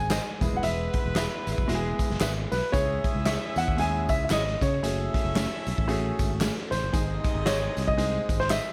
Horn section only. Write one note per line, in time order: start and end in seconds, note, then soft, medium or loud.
0.42 2.48 G#3 medium
0.42 2.48 B3 medium
0.42 2.48 E4 medium
0.42 2.48 B4 medium
2.72 4.58 C#4 medium
2.72 4.58 E4 medium
2.72 4.57 G#4 medium
2.72 4.58 E5 medium
4.84 6.68 C#4 medium
4.84 6.68 E4 medium
4.84 6.68 A4 medium
4.84 6.68 E5 medium
6.94 8.48 C3 medium
6.94 8.48 D#4 medium
6.94 8.48 G#4 medium
6.94 8.48 D#5 medium